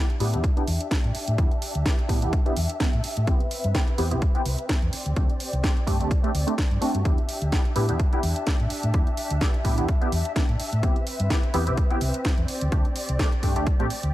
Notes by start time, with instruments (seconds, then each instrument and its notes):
Already playing: violin section D4 G4 E5
0.10 closed hi-hat
0.20 fingered electric bass A2, analog polysynth B3 D4 E4 G4, open hi-hat
0.33 fingered electric bass E2, analog polysynth B3 D4 E4 G4, closed hi-hat
0.44 kick, closed hi-hat
0.56 analog polysynth B3 D4 E4 G4, closed hi-hat
0.68 fingered electric bass E2, open hi-hat
0.81 closed hi-hat
0.91 analog polysynth B3 D4 E4 G4, kick, snare, closed hi-hat
1.04 fingered electric bass A2, closed hi-hat
1.15 muted fingered electric bass stroke, open hi-hat
1.28 fingered electric bass A2, closed hi-hat
1.38 analog polysynth B3 D4 E4 G4, kick, closed hi-hat
1.51 closed hi-hat
1.62 open hi-hat
1.75 fingered electric bass D2, closed hi-hat
1.85 analog polysynth B3 D4 E4 G4, kick, snare, closed hi-hat
1.99 closed hi-hat
2.09 fingered electric bass A2, analog polysynth B3 D4 E4 G4, kick, open hi-hat
2.22 fingered electric bass E2, analog polysynth B3 D4 E4 G4, closed hi-hat
2.33 kick, closed hi-hat
2.45 analog polysynth B3 D4 E4 G4, closed hi-hat
2.57 fingered electric bass E2, open hi-hat
2.70 closed hi-hat
2.80 analog polysynth B3 D4 E4 G4, kick, snare, closed hi-hat
2.93 fingered electric bass A2, closed hi-hat
3.04 open hi-hat
3.17 fingered electric bass A2, closed hi-hat
3.27 fingered electric bass C2, analog polysynth B3 C4 E4 G4, violin section C4 B4, kick, closed hi-hat
3.40 closed hi-hat
3.51 open hi-hat
3.64 fingered electric bass G2, closed hi-hat
3.74 analog polysynth B3 C4 E4 G4, kick, snare, closed hi-hat
3.88 closed hi-hat
3.98 fingered electric bass E2, analog polysynth B3 C4 E4 G4, open hi-hat
4.11 fingered electric bass C2, analog polysynth B3 C4 E4 G4, closed hi-hat
4.22 kick, closed hi-hat
4.35 analog polysynth B3 C4 E4 G4, closed hi-hat
4.46 fingered electric bass C2, open hi-hat
4.59 closed hi-hat
4.69 analog polysynth B3 C4 E4 G4, kick, snare, closed hi-hat
4.82 fingered electric bass E2, closed hi-hat
4.92 violin section G4 D5, muted fingered electric bass stroke, open hi-hat
5.06 fingered electric bass D2, closed hi-hat
5.16 fingered electric bass D2, analog polysynth A3 C4 D4 G4, kick, closed hi-hat
5.30 closed hi-hat
5.40 open hi-hat
5.53 fingered electric bass C2, closed hi-hat
5.63 analog polysynth A3 C4 D4 G4, kick, snare, closed hi-hat
5.77 closed hi-hat
5.87 fingered electric bass G2, analog polysynth A3 C4 D4 G4, kick, open hi-hat
6.00 fingered electric bass D2, analog polysynth A3 C4 D4 G4, closed hi-hat
6.11 kick, closed hi-hat
6.23 analog polysynth A3 C4 D4 G4, closed hi-hat
6.34 fingered electric bass D2, open hi-hat
6.47 analog polysynth A3 C4 D4 G4, closed hi-hat
6.58 kick, snare, closed hi-hat
6.71 fingered electric bass G2, closed hi-hat
6.81 analog polysynth A3 C4 D4 F#4, muted fingered electric bass stroke, open hi-hat
6.94 fingered electric bass G2, closed hi-hat
7.05 analog polysynth B3 D4 E4 G4, violin section D4 E5, kick, closed hi-hat
7.18 closed hi-hat
7.29 open hi-hat
7.42 fingered electric bass D2, closed hi-hat
7.52 analog polysynth B3 D4 E4 G4, kick, snare, closed hi-hat
7.65 closed hi-hat
7.76 fingered electric bass A2, analog polysynth B3 D4 E4 G4, open hi-hat
7.89 fingered electric bass E2, analog polysynth B3 D4 E4 G4, closed hi-hat
8.00 kick, closed hi-hat
8.12 analog polysynth B3 D4 E4 G4, closed hi-hat
8.23 fingered electric bass E2, open hi-hat
8.36 closed hi-hat
8.47 analog polysynth B3 D4 E4 G4, kick, snare, closed hi-hat
8.60 fingered electric bass A2, closed hi-hat
8.70 muted fingered electric bass stroke, open hi-hat
8.83 fingered electric bass A2, closed hi-hat
8.94 analog polysynth B3 D4 E4 G4, kick, closed hi-hat
9.07 closed hi-hat
9.17 open hi-hat
9.30 fingered electric bass D2, closed hi-hat
9.41 analog polysynth B3 D4 E4 G4, kick, snare, closed hi-hat
9.54 closed hi-hat
9.64 fingered electric bass A2, analog polysynth B3 D4 E4 G4, kick, open hi-hat
9.78 fingered electric bass E2, analog polysynth B3 D4 E4 G4, closed hi-hat
9.88 kick, closed hi-hat
10.01 analog polysynth B3 D4 E4 G4, closed hi-hat
10.12 fingered electric bass E2, open hi-hat
10.25 closed hi-hat
10.36 analog polysynth B3 D4 E4 G4, kick, snare, closed hi-hat
10.49 fingered electric bass A2, closed hi-hat
10.60 muted fingered electric bass stroke, open hi-hat
10.73 fingered electric bass A2, closed hi-hat
10.83 fingered electric bass C2, analog polysynth B3 C4 E4 G4, violin section C4 B4, kick, closed hi-hat
10.96 closed hi-hat
11.07 open hi-hat
11.20 fingered electric bass G2, closed hi-hat
11.30 analog polysynth B3 C4 E4 G4, kick, snare, closed hi-hat
11.43 closed hi-hat
11.54 fingered electric bass E2, analog polysynth B3 C4 E4 G4, open hi-hat
11.67 fingered electric bass C2, analog polysynth B3 C4 E4 G4, closed hi-hat
11.77 kick, closed hi-hat
11.90 analog polysynth B3 C4 E4 G4, closed hi-hat
12.01 fingered electric bass C2, open hi-hat
12.14 closed hi-hat
12.25 analog polysynth B3 C4 E4 G4, kick, snare, closed hi-hat
12.38 fingered electric bass E2, closed hi-hat
12.48 violin section G4 D5, muted fingered electric bass stroke, open hi-hat
12.61 fingered electric bass D2, closed hi-hat
12.72 analog polysynth A3 C4 D4 G4, kick, closed hi-hat
12.85 closed hi-hat
12.96 open hi-hat
13.09 fingered electric bass C2, closed hi-hat
13.19 analog polysynth A3 C4 D4 G4, kick, snare, closed hi-hat
13.32 closed hi-hat
13.43 fingered electric bass G2, analog polysynth A3 C4 D4 G4, kick, open hi-hat
13.56 fingered electric bass D2, analog polysynth A3 C4 D4 G4, closed hi-hat
13.67 kick, closed hi-hat
13.79 fingered electric bass A1, analog polysynth A3 C4 D4 G4, closed hi-hat
13.90 open hi-hat
14.03 fingered electric bass D2, closed hi-hat